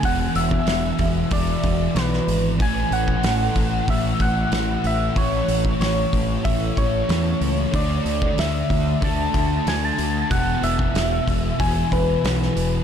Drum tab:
HH |o-o-o-o-o-o-o-o-|o-o-o-o-o-o-o-o-|o-o-o-o-o-o-o-o-|o-o-o-o-o-o-o-o-|
SD |----o-------oo--|----o-------o---|----o-------o---|----o-------o---|
BD |o--o--o-o-o-----|o--o--o-o-o-----|o--o--o-o-o-----|o--o--o-o-o-----|

HH |o-o-o-o-o-o-o-o-|
SD |----o-------oo--|
BD |o--o--o-o-o-----|